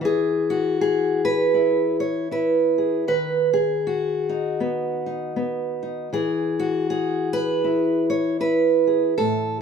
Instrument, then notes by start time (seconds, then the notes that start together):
steel-string acoustic guitar
0.01 E3 G#4
0.50 F#4
0.81 G#4
1.25 B4
1.54 E4
2.00 C#5
2.31 E4 B4
2.78 G#4
3.08 D#3 B4
3.53 G#4
3.87 F#4
4.29 D#4
4.60 B3
5.06 D#4
5.36 B3
5.83 D#4
6.13 E3 G#4
6.59 F#4
6.90 G#4
7.33 B4
7.64 E4
8.10 C#5
8.40 E4 B4
8.87 G#4
9.18 A2 A4